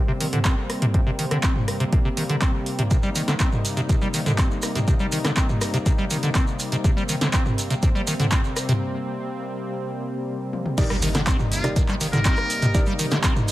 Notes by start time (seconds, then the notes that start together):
Already playing: C3 G3 A#3 C4
0.08 C3
0.20 D#3, open hi-hat
0.33 D3, closed hi-hat, mid tom
0.45 C4, kick, clap, closed hi-hat
0.70 cross-stick, open hi-hat
0.82 C3, closed hi-hat, mid tom
0.94 C3, kick, closed hi-hat
1.07 C3
1.19 D#3, open hi-hat
1.31 D3, cross-stick, closed hi-hat
1.43 C4, kick, clap, closed hi-hat
1.56 mid tom
1.68 cross-stick, open hi-hat
1.80 C3, closed hi-hat
1.93 C3, kick, closed hi-hat
2.05 C3
2.17 D#3, open hi-hat
2.29 D3, closed hi-hat
2.42 C4, kick, clap, closed hi-hat
2.66 open hi-hat
2.79 C3, closed hi-hat, mid tom
2.91 C3 D#4, kick, closed hi-hat, shekere
3.03 G3, shekere
3.15 D#3, open hi-hat, shekere
3.28 D3, snare, closed hi-hat, shekere
3.40 C4, kick, clap, closed hi-hat, shekere
3.52 mid tom, shekere
3.65 open hi-hat, shekere
3.77 C3, closed hi-hat, shekere
3.89 C3, kick, closed hi-hat, shekere
4.02 G3, shekere
4.14 D#3, open hi-hat, shekere
4.26 D3, closed hi-hat, mid tom, shekere
4.38 C4, kick, clap, closed hi-hat, shekere
4.51 shekere
4.62 cross-stick, open hi-hat, shekere
4.75 C3, closed hi-hat, mid tom, shekere
4.87 C3, kick, closed hi-hat, shekere
4.99 G3, shekere
5.12 D#3, open hi-hat, shekere
5.24 D3, cross-stick, snare, closed hi-hat, shekere
5.37 C4, kick, clap, closed hi-hat, shekere
5.49 mid tom, shekere
5.61 cross-stick, open hi-hat, shekere
5.74 C3, closed hi-hat, shekere
5.86 C3, kick, closed hi-hat, shekere
5.98 G3, shekere
6.10 D#3, open hi-hat, shekere
6.23 D3, closed hi-hat, shekere
6.35 C4, kick, clap, closed hi-hat, shekere
6.47 shekere
6.59 open hi-hat, shekere
6.72 C3, closed hi-hat, shekere
6.84 C3 C4, kick, closed hi-hat, shekere
6.97 G3, shekere
7.09 D#3, open hi-hat, shekere
7.21 D3, snare, closed hi-hat, shekere
7.33 C4, kick, clap, closed hi-hat, shekere
7.46 mid tom, shekere
7.58 open hi-hat, shekere
7.70 C3, closed hi-hat, shekere
7.82 C3, kick, closed hi-hat, shekere
7.95 G3, shekere
8.07 D#3, open hi-hat, shekere
8.20 D3, closed hi-hat, mid tom, shekere
8.31 C4, kick, clap, closed hi-hat, shekere
8.44 shekere
8.56 cross-stick, open hi-hat, shekere
8.69 C3, closed hi-hat, mid tom, shekere
10.53 high tom
10.66 mid tom
10.78 C3 G3 A#3 D#4 G4 A#4 D5, kick, closed hi-hat, crash, impact, shekere
10.90 G3, cross-stick, shekere
11.02 D#3, open hi-hat, shekere
11.14 D3, snare, closed hi-hat, shekere
11.27 C4, kick, clap, closed hi-hat, shekere
11.39 mid tom, shekere
11.52 F4, open hi-hat, shekere
11.64 C3 D#4 G4 A#4 D5, cross-stick, closed hi-hat, shekere
11.76 C3, kick, closed hi-hat, shekere
11.88 G3, clap, shekere
12.01 D#3, open hi-hat, shekere
12.13 D3 A#4, closed hi-hat, mid tom, shekere
12.25 C4, kick, clap, closed hi-hat, shekere
12.37 cross-stick, shekere
12.50 open hi-hat, shekere
12.62 C3, closed hi-hat, mid tom, shekere
12.74 C3 D#4 G4 A#4 D5, kick, closed hi-hat, shekere
12.86 G3, shekere
12.99 D#3, open hi-hat, shekere
13.10 D3, snare, closed hi-hat, shekere
13.24 C4, kick, clap, closed hi-hat, shekere
13.36 mid tom, shekere
13.48 open hi-hat, shekere